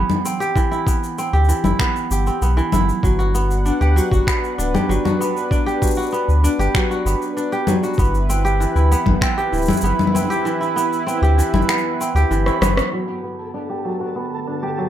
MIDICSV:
0, 0, Header, 1, 6, 480
1, 0, Start_track
1, 0, Key_signature, 1, "major"
1, 0, Tempo, 618557
1, 431, Time_signature, 4, 2, 24, 8
1, 11555, End_track
2, 0, Start_track
2, 0, Title_t, "Synth texture"
2, 0, Program_c, 0, 99
2, 10037, Note_on_c, 0, 69, 71
2, 10039, Note_on_c, 0, 81, 83
2, 11555, Note_off_c, 0, 69, 0
2, 11555, Note_off_c, 0, 81, 0
2, 11555, End_track
3, 0, Start_track
3, 0, Title_t, "Analog synth pad"
3, 0, Program_c, 1, 89
3, 2350, Note_on_c, 1, 62, 82
3, 2351, Note_on_c, 1, 71, 92
3, 2352, Note_on_c, 1, 78, 75
3, 4253, Note_off_c, 1, 78, 0
3, 6159, Note_off_c, 1, 62, 0
3, 6160, Note_off_c, 1, 71, 0
3, 6185, Note_on_c, 1, 71, 86
3, 6189, Note_on_c, 1, 64, 97
3, 9997, Note_off_c, 1, 71, 0
3, 9999, Note_off_c, 1, 64, 0
3, 10030, Note_on_c, 1, 43, 69
3, 10031, Note_on_c, 1, 71, 82
3, 10032, Note_on_c, 1, 50, 66
3, 11555, Note_off_c, 1, 43, 0
3, 11555, Note_off_c, 1, 50, 0
3, 11555, Note_off_c, 1, 71, 0
3, 11555, End_track
4, 0, Start_track
4, 0, Title_t, "Kora"
4, 0, Program_c, 2, 46
4, 0, Note_on_c, 2, 52, 70
4, 0, Note_on_c, 2, 59, 82
4, 0, Note_on_c, 2, 64, 70
4, 0, Note_on_c, 2, 67, 90
4, 196, Note_on_c, 2, 60, 72
4, 243, Note_off_c, 2, 59, 0
4, 310, Note_off_c, 2, 67, 0
4, 313, Note_on_c, 2, 67, 99
4, 426, Note_off_c, 2, 52, 0
4, 436, Note_on_c, 2, 52, 83
4, 551, Note_off_c, 2, 64, 0
4, 555, Note_on_c, 2, 64, 73
4, 673, Note_on_c, 2, 59, 69
4, 720, Note_off_c, 2, 60, 0
4, 919, Note_on_c, 2, 60, 73
4, 965, Note_off_c, 2, 59, 0
4, 1031, Note_off_c, 2, 67, 0
4, 1035, Note_on_c, 2, 67, 92
4, 1144, Note_off_c, 2, 52, 0
4, 1153, Note_on_c, 2, 52, 71
4, 1272, Note_off_c, 2, 64, 0
4, 1275, Note_on_c, 2, 64, 75
4, 1398, Note_on_c, 2, 59, 78
4, 1444, Note_off_c, 2, 60, 0
4, 1638, Note_off_c, 2, 67, 0
4, 1641, Note_on_c, 2, 67, 70
4, 1761, Note_on_c, 2, 60, 69
4, 1807, Note_off_c, 2, 59, 0
4, 1878, Note_on_c, 2, 59, 68
4, 1925, Note_off_c, 2, 60, 0
4, 1985, Note_off_c, 2, 52, 0
4, 1994, Note_on_c, 2, 52, 89
4, 2112, Note_off_c, 2, 64, 0
4, 2115, Note_on_c, 2, 64, 89
4, 2356, Note_on_c, 2, 54, 77
4, 2390, Note_off_c, 2, 52, 0
4, 2402, Note_off_c, 2, 67, 0
4, 2474, Note_on_c, 2, 66, 72
4, 2593, Note_off_c, 2, 59, 0
4, 2596, Note_on_c, 2, 59, 69
4, 2836, Note_on_c, 2, 62, 71
4, 2956, Note_on_c, 2, 67, 96
4, 3003, Note_off_c, 2, 66, 0
4, 3064, Note_off_c, 2, 54, 0
4, 3074, Note_on_c, 2, 54, 73
4, 3120, Note_off_c, 2, 67, 0
4, 3195, Note_on_c, 2, 66, 73
4, 3316, Note_off_c, 2, 59, 0
4, 3319, Note_on_c, 2, 59, 78
4, 3331, Note_off_c, 2, 64, 0
4, 3554, Note_off_c, 2, 62, 0
4, 3557, Note_on_c, 2, 62, 68
4, 3680, Note_on_c, 2, 67, 88
4, 3727, Note_off_c, 2, 66, 0
4, 3788, Note_off_c, 2, 54, 0
4, 3797, Note_on_c, 2, 54, 78
4, 3844, Note_off_c, 2, 67, 0
4, 3919, Note_on_c, 2, 66, 74
4, 4036, Note_off_c, 2, 59, 0
4, 4039, Note_on_c, 2, 59, 74
4, 4273, Note_off_c, 2, 62, 0
4, 4276, Note_on_c, 2, 62, 77
4, 4395, Note_on_c, 2, 67, 95
4, 4442, Note_off_c, 2, 66, 0
4, 4505, Note_off_c, 2, 54, 0
4, 4514, Note_on_c, 2, 54, 67
4, 4561, Note_off_c, 2, 67, 0
4, 4634, Note_on_c, 2, 66, 75
4, 4750, Note_off_c, 2, 59, 0
4, 4753, Note_on_c, 2, 59, 75
4, 4993, Note_off_c, 2, 62, 0
4, 4997, Note_on_c, 2, 62, 78
4, 5117, Note_on_c, 2, 67, 101
4, 5163, Note_off_c, 2, 66, 0
4, 5228, Note_off_c, 2, 54, 0
4, 5238, Note_on_c, 2, 54, 82
4, 5284, Note_off_c, 2, 67, 0
4, 5361, Note_on_c, 2, 66, 74
4, 5477, Note_off_c, 2, 59, 0
4, 5480, Note_on_c, 2, 59, 73
4, 5714, Note_off_c, 2, 62, 0
4, 5717, Note_on_c, 2, 62, 71
4, 5838, Note_on_c, 2, 67, 94
4, 5884, Note_off_c, 2, 66, 0
4, 5947, Note_off_c, 2, 54, 0
4, 5957, Note_on_c, 2, 54, 72
4, 6003, Note_off_c, 2, 67, 0
4, 6079, Note_on_c, 2, 66, 71
4, 6195, Note_off_c, 2, 59, 0
4, 6198, Note_on_c, 2, 59, 79
4, 6230, Note_off_c, 2, 54, 0
4, 6436, Note_on_c, 2, 60, 72
4, 6483, Note_off_c, 2, 59, 0
4, 6555, Note_on_c, 2, 67, 105
4, 6602, Note_off_c, 2, 66, 0
4, 6675, Note_on_c, 2, 52, 75
4, 6797, Note_on_c, 2, 64, 75
4, 6918, Note_on_c, 2, 59, 83
4, 6965, Note_off_c, 2, 60, 0
4, 7020, Note_off_c, 2, 62, 0
4, 7154, Note_on_c, 2, 60, 86
4, 7200, Note_off_c, 2, 59, 0
4, 7273, Note_off_c, 2, 67, 0
4, 7276, Note_on_c, 2, 67, 96
4, 7382, Note_off_c, 2, 52, 0
4, 7391, Note_on_c, 2, 52, 70
4, 7508, Note_off_c, 2, 64, 0
4, 7511, Note_on_c, 2, 64, 68
4, 7633, Note_on_c, 2, 59, 77
4, 7680, Note_off_c, 2, 60, 0
4, 7872, Note_on_c, 2, 60, 72
4, 7919, Note_off_c, 2, 59, 0
4, 7990, Note_off_c, 2, 67, 0
4, 7993, Note_on_c, 2, 67, 97
4, 8101, Note_off_c, 2, 52, 0
4, 8110, Note_on_c, 2, 52, 79
4, 8228, Note_off_c, 2, 64, 0
4, 8231, Note_on_c, 2, 64, 78
4, 8349, Note_on_c, 2, 59, 74
4, 8395, Note_off_c, 2, 60, 0
4, 8587, Note_on_c, 2, 60, 75
4, 8633, Note_off_c, 2, 59, 0
4, 8708, Note_off_c, 2, 67, 0
4, 8711, Note_on_c, 2, 67, 100
4, 8822, Note_off_c, 2, 52, 0
4, 8832, Note_on_c, 2, 52, 80
4, 8948, Note_off_c, 2, 64, 0
4, 8951, Note_on_c, 2, 64, 77
4, 9073, Note_on_c, 2, 59, 85
4, 9120, Note_off_c, 2, 60, 0
4, 9317, Note_on_c, 2, 60, 74
4, 9363, Note_off_c, 2, 59, 0
4, 9430, Note_off_c, 2, 67, 0
4, 9434, Note_on_c, 2, 67, 101
4, 9542, Note_off_c, 2, 52, 0
4, 9551, Note_on_c, 2, 52, 78
4, 9667, Note_off_c, 2, 64, 0
4, 9671, Note_on_c, 2, 64, 71
4, 9788, Note_on_c, 2, 59, 81
4, 9835, Note_off_c, 2, 60, 0
4, 10033, Note_on_c, 2, 54, 64
4, 10070, Note_off_c, 2, 52, 0
4, 10080, Note_off_c, 2, 67, 0
4, 10145, Note_on_c, 2, 66, 59
4, 10265, Note_off_c, 2, 59, 0
4, 10268, Note_on_c, 2, 59, 61
4, 10507, Note_on_c, 2, 62, 62
4, 10628, Note_on_c, 2, 67, 78
4, 10674, Note_off_c, 2, 66, 0
4, 10738, Note_off_c, 2, 54, 0
4, 10748, Note_on_c, 2, 54, 61
4, 10794, Note_off_c, 2, 67, 0
4, 10869, Note_on_c, 2, 66, 60
4, 10887, Note_off_c, 2, 64, 0
4, 10983, Note_off_c, 2, 59, 0
4, 10986, Note_on_c, 2, 59, 63
4, 11228, Note_off_c, 2, 62, 0
4, 11231, Note_on_c, 2, 62, 55
4, 11351, Note_on_c, 2, 67, 77
4, 11398, Note_off_c, 2, 66, 0
4, 11461, Note_off_c, 2, 54, 0
4, 11470, Note_on_c, 2, 54, 59
4, 11516, Note_off_c, 2, 67, 0
4, 11555, Note_off_c, 2, 54, 0
4, 11555, Note_off_c, 2, 59, 0
4, 11555, Note_off_c, 2, 62, 0
4, 11555, End_track
5, 0, Start_track
5, 0, Title_t, "Sub bass"
5, 0, Program_c, 3, 38
5, 1031, Note_on_c, 3, 38, 88
5, 1183, Note_off_c, 3, 38, 0
5, 1270, Note_on_c, 3, 31, 94
5, 1347, Note_off_c, 3, 31, 0
5, 1632, Note_on_c, 3, 31, 97
5, 1784, Note_off_c, 3, 31, 0
5, 1872, Note_on_c, 3, 35, 98
5, 2024, Note_off_c, 3, 35, 0
5, 2113, Note_on_c, 3, 31, 94
5, 2265, Note_off_c, 3, 31, 0
5, 2351, Note_on_c, 3, 31, 99
5, 2881, Note_off_c, 3, 31, 0
5, 2952, Note_on_c, 3, 38, 94
5, 3104, Note_off_c, 3, 38, 0
5, 3192, Note_on_c, 3, 31, 104
5, 3268, Note_off_c, 3, 31, 0
5, 3554, Note_on_c, 3, 26, 83
5, 3705, Note_off_c, 3, 26, 0
5, 3792, Note_on_c, 3, 31, 89
5, 3868, Note_off_c, 3, 31, 0
5, 4874, Note_on_c, 3, 38, 94
5, 5025, Note_off_c, 3, 38, 0
5, 5110, Note_on_c, 3, 31, 100
5, 5187, Note_off_c, 3, 31, 0
5, 5471, Note_on_c, 3, 31, 109
5, 5547, Note_off_c, 3, 31, 0
5, 6192, Note_on_c, 3, 31, 99
5, 6721, Note_off_c, 3, 31, 0
5, 6791, Note_on_c, 3, 38, 100
5, 6943, Note_off_c, 3, 38, 0
5, 7031, Note_on_c, 3, 31, 101
5, 7107, Note_off_c, 3, 31, 0
5, 7387, Note_on_c, 3, 26, 84
5, 7542, Note_off_c, 3, 26, 0
5, 7623, Note_on_c, 3, 31, 100
5, 7703, Note_off_c, 3, 31, 0
5, 8704, Note_on_c, 3, 38, 99
5, 8860, Note_off_c, 3, 38, 0
5, 8946, Note_on_c, 3, 31, 101
5, 9025, Note_off_c, 3, 31, 0
5, 9423, Note_on_c, 3, 38, 94
5, 9503, Note_off_c, 3, 38, 0
5, 9545, Note_on_c, 3, 31, 96
5, 9701, Note_off_c, 3, 31, 0
5, 9784, Note_on_c, 3, 31, 97
5, 9940, Note_off_c, 3, 31, 0
5, 11555, End_track
6, 0, Start_track
6, 0, Title_t, "Drums"
6, 74, Note_on_c, 9, 64, 57
6, 81, Note_on_c, 9, 69, 21
6, 152, Note_off_c, 9, 64, 0
6, 159, Note_off_c, 9, 69, 0
6, 198, Note_on_c, 9, 69, 74
6, 276, Note_off_c, 9, 69, 0
6, 321, Note_on_c, 9, 69, 32
6, 398, Note_off_c, 9, 69, 0
6, 431, Note_on_c, 9, 36, 118
6, 438, Note_on_c, 9, 69, 42
6, 509, Note_off_c, 9, 36, 0
6, 516, Note_off_c, 9, 69, 0
6, 560, Note_on_c, 9, 69, 23
6, 638, Note_off_c, 9, 69, 0
6, 672, Note_on_c, 9, 36, 105
6, 680, Note_on_c, 9, 69, 72
6, 750, Note_off_c, 9, 36, 0
6, 758, Note_off_c, 9, 69, 0
6, 805, Note_on_c, 9, 69, 33
6, 882, Note_off_c, 9, 69, 0
6, 919, Note_on_c, 9, 69, 44
6, 997, Note_off_c, 9, 69, 0
6, 1039, Note_on_c, 9, 69, 10
6, 1117, Note_off_c, 9, 69, 0
6, 1120, Note_on_c, 9, 69, 14
6, 1159, Note_off_c, 9, 69, 0
6, 1159, Note_on_c, 9, 69, 70
6, 1236, Note_off_c, 9, 69, 0
6, 1272, Note_on_c, 9, 64, 53
6, 1279, Note_on_c, 9, 69, 35
6, 1350, Note_off_c, 9, 64, 0
6, 1356, Note_off_c, 9, 69, 0
6, 1391, Note_on_c, 9, 36, 121
6, 1393, Note_on_c, 9, 26, 78
6, 1400, Note_on_c, 9, 69, 45
6, 1469, Note_off_c, 9, 36, 0
6, 1471, Note_off_c, 9, 26, 0
6, 1478, Note_off_c, 9, 69, 0
6, 1522, Note_on_c, 9, 69, 23
6, 1600, Note_off_c, 9, 69, 0
6, 1638, Note_on_c, 9, 69, 78
6, 1716, Note_off_c, 9, 69, 0
6, 1759, Note_on_c, 9, 69, 31
6, 1837, Note_off_c, 9, 69, 0
6, 1880, Note_on_c, 9, 69, 47
6, 1957, Note_off_c, 9, 69, 0
6, 2003, Note_on_c, 9, 69, 21
6, 2081, Note_off_c, 9, 69, 0
6, 2113, Note_on_c, 9, 64, 70
6, 2120, Note_on_c, 9, 69, 69
6, 2191, Note_off_c, 9, 64, 0
6, 2198, Note_off_c, 9, 69, 0
6, 2242, Note_on_c, 9, 69, 32
6, 2320, Note_off_c, 9, 69, 0
6, 2352, Note_on_c, 9, 36, 103
6, 2362, Note_on_c, 9, 69, 44
6, 2430, Note_off_c, 9, 36, 0
6, 2440, Note_off_c, 9, 69, 0
6, 2482, Note_on_c, 9, 69, 22
6, 2560, Note_off_c, 9, 69, 0
6, 2600, Note_on_c, 9, 69, 71
6, 2677, Note_off_c, 9, 69, 0
6, 2722, Note_on_c, 9, 69, 34
6, 2800, Note_off_c, 9, 69, 0
6, 2839, Note_on_c, 9, 69, 41
6, 2916, Note_off_c, 9, 69, 0
6, 2962, Note_on_c, 9, 69, 22
6, 3040, Note_off_c, 9, 69, 0
6, 3085, Note_on_c, 9, 69, 76
6, 3162, Note_off_c, 9, 69, 0
6, 3193, Note_on_c, 9, 36, 96
6, 3204, Note_on_c, 9, 69, 33
6, 3271, Note_off_c, 9, 36, 0
6, 3281, Note_off_c, 9, 69, 0
6, 3314, Note_on_c, 9, 36, 114
6, 3320, Note_on_c, 9, 26, 69
6, 3327, Note_on_c, 9, 69, 44
6, 3392, Note_off_c, 9, 36, 0
6, 3397, Note_off_c, 9, 26, 0
6, 3404, Note_off_c, 9, 69, 0
6, 3446, Note_on_c, 9, 69, 22
6, 3523, Note_off_c, 9, 69, 0
6, 3566, Note_on_c, 9, 69, 74
6, 3643, Note_off_c, 9, 69, 0
6, 3683, Note_on_c, 9, 64, 70
6, 3690, Note_on_c, 9, 69, 30
6, 3761, Note_off_c, 9, 64, 0
6, 3767, Note_off_c, 9, 69, 0
6, 3811, Note_on_c, 9, 69, 45
6, 3888, Note_off_c, 9, 69, 0
6, 3922, Note_on_c, 9, 64, 54
6, 3929, Note_on_c, 9, 69, 22
6, 4000, Note_off_c, 9, 64, 0
6, 4007, Note_off_c, 9, 69, 0
6, 4048, Note_on_c, 9, 69, 70
6, 4126, Note_off_c, 9, 69, 0
6, 4166, Note_on_c, 9, 69, 31
6, 4243, Note_off_c, 9, 69, 0
6, 4275, Note_on_c, 9, 36, 106
6, 4285, Note_on_c, 9, 69, 41
6, 4353, Note_off_c, 9, 36, 0
6, 4363, Note_off_c, 9, 69, 0
6, 4407, Note_on_c, 9, 69, 22
6, 4484, Note_off_c, 9, 69, 0
6, 4517, Note_on_c, 9, 36, 96
6, 4521, Note_on_c, 9, 69, 62
6, 4554, Note_off_c, 9, 69, 0
6, 4554, Note_on_c, 9, 69, 55
6, 4582, Note_off_c, 9, 69, 0
6, 4582, Note_on_c, 9, 69, 45
6, 4594, Note_off_c, 9, 36, 0
6, 4612, Note_off_c, 9, 69, 0
6, 4612, Note_on_c, 9, 69, 37
6, 4641, Note_off_c, 9, 69, 0
6, 4641, Note_on_c, 9, 69, 33
6, 4673, Note_off_c, 9, 69, 0
6, 4673, Note_on_c, 9, 69, 27
6, 4704, Note_off_c, 9, 69, 0
6, 4704, Note_on_c, 9, 69, 23
6, 4735, Note_off_c, 9, 69, 0
6, 4735, Note_on_c, 9, 69, 18
6, 4763, Note_off_c, 9, 69, 0
6, 4763, Note_on_c, 9, 69, 42
6, 4841, Note_off_c, 9, 69, 0
6, 4883, Note_on_c, 9, 69, 22
6, 4961, Note_off_c, 9, 69, 0
6, 5002, Note_on_c, 9, 69, 69
6, 5080, Note_off_c, 9, 69, 0
6, 5124, Note_on_c, 9, 69, 32
6, 5202, Note_off_c, 9, 69, 0
6, 5235, Note_on_c, 9, 36, 120
6, 5236, Note_on_c, 9, 26, 73
6, 5243, Note_on_c, 9, 69, 42
6, 5313, Note_off_c, 9, 36, 0
6, 5314, Note_off_c, 9, 26, 0
6, 5321, Note_off_c, 9, 69, 0
6, 5365, Note_on_c, 9, 69, 21
6, 5443, Note_off_c, 9, 69, 0
6, 5484, Note_on_c, 9, 69, 68
6, 5562, Note_off_c, 9, 69, 0
6, 5603, Note_on_c, 9, 69, 29
6, 5680, Note_off_c, 9, 69, 0
6, 5725, Note_on_c, 9, 69, 47
6, 5802, Note_off_c, 9, 69, 0
6, 5840, Note_on_c, 9, 69, 18
6, 5917, Note_off_c, 9, 69, 0
6, 5952, Note_on_c, 9, 64, 72
6, 5959, Note_on_c, 9, 69, 68
6, 6029, Note_off_c, 9, 64, 0
6, 6036, Note_off_c, 9, 69, 0
6, 6079, Note_on_c, 9, 69, 30
6, 6157, Note_off_c, 9, 69, 0
6, 6159, Note_on_c, 9, 69, 23
6, 6192, Note_on_c, 9, 36, 107
6, 6200, Note_off_c, 9, 69, 0
6, 6200, Note_on_c, 9, 69, 41
6, 6270, Note_off_c, 9, 36, 0
6, 6277, Note_off_c, 9, 69, 0
6, 6321, Note_on_c, 9, 69, 23
6, 6399, Note_off_c, 9, 69, 0
6, 6440, Note_on_c, 9, 69, 69
6, 6518, Note_off_c, 9, 69, 0
6, 6563, Note_on_c, 9, 69, 31
6, 6641, Note_off_c, 9, 69, 0
6, 6684, Note_on_c, 9, 69, 43
6, 6761, Note_off_c, 9, 69, 0
6, 6801, Note_on_c, 9, 69, 21
6, 6879, Note_off_c, 9, 69, 0
6, 6922, Note_on_c, 9, 69, 67
6, 7000, Note_off_c, 9, 69, 0
6, 7030, Note_on_c, 9, 36, 92
6, 7034, Note_on_c, 9, 64, 64
6, 7108, Note_off_c, 9, 36, 0
6, 7111, Note_off_c, 9, 64, 0
6, 7149, Note_on_c, 9, 36, 108
6, 7154, Note_on_c, 9, 26, 73
6, 7161, Note_on_c, 9, 69, 43
6, 7227, Note_off_c, 9, 36, 0
6, 7232, Note_off_c, 9, 26, 0
6, 7239, Note_off_c, 9, 69, 0
6, 7282, Note_on_c, 9, 69, 21
6, 7359, Note_off_c, 9, 69, 0
6, 7400, Note_on_c, 9, 69, 32
6, 7428, Note_off_c, 9, 69, 0
6, 7428, Note_on_c, 9, 69, 38
6, 7463, Note_off_c, 9, 69, 0
6, 7463, Note_on_c, 9, 69, 38
6, 7491, Note_off_c, 9, 69, 0
6, 7491, Note_on_c, 9, 69, 45
6, 7515, Note_on_c, 9, 64, 80
6, 7522, Note_off_c, 9, 69, 0
6, 7522, Note_on_c, 9, 69, 51
6, 7548, Note_off_c, 9, 69, 0
6, 7548, Note_on_c, 9, 69, 49
6, 7579, Note_off_c, 9, 69, 0
6, 7579, Note_on_c, 9, 69, 57
6, 7593, Note_off_c, 9, 64, 0
6, 7611, Note_off_c, 9, 69, 0
6, 7611, Note_on_c, 9, 69, 60
6, 7644, Note_off_c, 9, 69, 0
6, 7644, Note_on_c, 9, 69, 45
6, 7721, Note_off_c, 9, 69, 0
6, 7755, Note_on_c, 9, 64, 56
6, 7762, Note_on_c, 9, 69, 20
6, 7816, Note_off_c, 9, 64, 0
6, 7816, Note_on_c, 9, 64, 42
6, 7839, Note_off_c, 9, 69, 0
6, 7877, Note_off_c, 9, 64, 0
6, 7877, Note_on_c, 9, 64, 35
6, 7884, Note_on_c, 9, 69, 67
6, 7936, Note_off_c, 9, 64, 0
6, 7936, Note_on_c, 9, 64, 29
6, 7961, Note_off_c, 9, 69, 0
6, 8004, Note_on_c, 9, 69, 31
6, 8014, Note_off_c, 9, 64, 0
6, 8081, Note_off_c, 9, 69, 0
6, 8120, Note_on_c, 9, 69, 41
6, 8198, Note_off_c, 9, 69, 0
6, 8243, Note_on_c, 9, 69, 22
6, 8320, Note_off_c, 9, 69, 0
6, 8363, Note_on_c, 9, 69, 70
6, 8440, Note_off_c, 9, 69, 0
6, 8481, Note_on_c, 9, 69, 32
6, 8559, Note_off_c, 9, 69, 0
6, 8601, Note_on_c, 9, 69, 44
6, 8678, Note_off_c, 9, 69, 0
6, 8722, Note_on_c, 9, 69, 22
6, 8800, Note_off_c, 9, 69, 0
6, 8840, Note_on_c, 9, 69, 70
6, 8918, Note_off_c, 9, 69, 0
6, 8953, Note_on_c, 9, 64, 61
6, 8960, Note_on_c, 9, 69, 14
6, 9016, Note_off_c, 9, 69, 0
6, 9016, Note_on_c, 9, 69, 18
6, 9031, Note_off_c, 9, 64, 0
6, 9071, Note_on_c, 9, 26, 80
6, 9078, Note_off_c, 9, 69, 0
6, 9078, Note_on_c, 9, 69, 43
6, 9141, Note_off_c, 9, 69, 0
6, 9141, Note_on_c, 9, 69, 26
6, 9149, Note_off_c, 9, 26, 0
6, 9218, Note_off_c, 9, 69, 0
6, 9320, Note_on_c, 9, 69, 72
6, 9398, Note_off_c, 9, 69, 0
6, 9440, Note_on_c, 9, 69, 30
6, 9517, Note_off_c, 9, 69, 0
6, 9559, Note_on_c, 9, 69, 43
6, 9637, Note_off_c, 9, 69, 0
6, 9671, Note_on_c, 9, 37, 48
6, 9678, Note_on_c, 9, 69, 21
6, 9749, Note_off_c, 9, 37, 0
6, 9756, Note_off_c, 9, 69, 0
6, 9792, Note_on_c, 9, 37, 73
6, 9792, Note_on_c, 9, 64, 75
6, 9799, Note_on_c, 9, 69, 72
6, 9870, Note_off_c, 9, 37, 0
6, 9870, Note_off_c, 9, 64, 0
6, 9877, Note_off_c, 9, 69, 0
6, 9913, Note_on_c, 9, 37, 81
6, 9919, Note_on_c, 9, 69, 33
6, 9990, Note_off_c, 9, 37, 0
6, 9997, Note_off_c, 9, 69, 0
6, 11555, End_track
0, 0, End_of_file